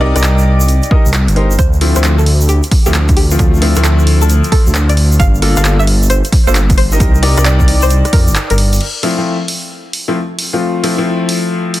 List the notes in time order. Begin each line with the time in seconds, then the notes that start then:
Already playing: C2
0.01 D#4 G4 A#4 D5
0.15 C2 D#4 G4 A#4 D5, cross-stick, closed hi-hat, shaker
0.23 clap, closed hi-hat
0.38 shaker
0.60 shaker
0.68 closed hi-hat, shaker
0.83 closed hi-hat, shaker
0.91 D#4 G4 A#4 D#5, kick
1.06 C2, shaker
1.13 cross-stick, clap, closed hi-hat, shaker
1.28 G1, closed hi-hat, shaker
1.36 D#4 G4 A#4 C5, closed hi-hat
1.51 shaker
1.59 D2 C5, kick, closed hi-hat, shaker
1.73 shaker
1.81 F3 A3 C4 E4, open hi-hat
1.96 D2 F3 A3 C4 E4 C5, cross-stick, closed hi-hat, shaker
2.04 clap, closed hi-hat, shaker
2.18 A4, shaker
2.26 open hi-hat
2.41 shaker
2.49 G4, closed hi-hat, shaker
2.63 closed hi-hat, shaker
2.71 kick, open hi-hat
2.86 D2 F3 A3 C4 E4 G4, shaker
2.94 cross-stick, clap, closed hi-hat, shaker
3.09 kick, closed hi-hat, shaker
3.17 G4, open hi-hat
3.31 F3 A3 C4 F4, shaker
3.39 D2, kick, closed hi-hat, shaker
3.54 shaker
3.62 F3 A3 C4 E4, open hi-hat
3.76 D2 F3 A3 C4 E4, cross-stick, closed hi-hat, shaker
3.84 A4, clap, closed hi-hat, shaker
3.99 shaker
4.07 open hi-hat
4.21 A4, shaker
4.29 closed hi-hat, shaker
4.44 closed hi-hat, shaker
4.52 A4, kick, open hi-hat
4.67 D2, shaker
4.75 cross-stick, clap, closed hi-hat, shaker
4.89 D5, closed hi-hat, shaker
4.97 open hi-hat
5.12 shaker
5.19 G1 F5, kick, closed hi-hat, shaker
5.35 shaker
5.42 A#3 D4 F4 A4, open hi-hat
5.57 G1 A#3 D4 F4 A4 F5, cross-stick, closed hi-hat, shaker
5.65 clap, closed hi-hat, shaker
5.79 E5, shaker
5.87 open hi-hat
6.03 shaker
6.10 C5, closed hi-hat, shaker
6.24 closed hi-hat, shaker
6.32 kick, open hi-hat
6.47 G1 A#3 D4 F4 A4 C5, shaker
6.55 cross-stick, clap, closed hi-hat, shaker
6.70 kick, closed hi-hat, shaker
6.78 C5, open hi-hat
6.92 D#4 G4 A#4 D#5, shaker
7.00 C2, kick, closed hi-hat, shaker
7.15 shaker
7.22 D#4 G4 A#4 D5, open hi-hat
7.37 C2 D#4 G4 A#4 D5, cross-stick, closed hi-hat, shaker
7.45 D5, clap, closed hi-hat, shaker
7.60 kick, shaker
7.68 open hi-hat
7.82 C5, shaker
7.90 closed hi-hat, shaker
8.05 cross-stick, closed hi-hat, shaker
8.13 F2 A#4, kick, open hi-hat
8.28 G1, shaker
8.35 cross-stick, clap, closed hi-hat, shaker
8.50 G1 A#4, closed hi-hat, shaker
8.58 open hi-hat
8.73 open hi-hat, shaker
8.81 crash
9.03 F3 A3 C4 E4, open hi-hat
9.18 F3 A3 C4 E4
9.48 open hi-hat
9.93 open hi-hat
10.08 F3 A3 C4 E4
10.39 open hi-hat
10.53 F3 A3 C4 F4
10.83 F3 A3 C4 E4, open hi-hat
10.98 F3 A3 C4 E4
11.29 open hi-hat
11.74 open hi-hat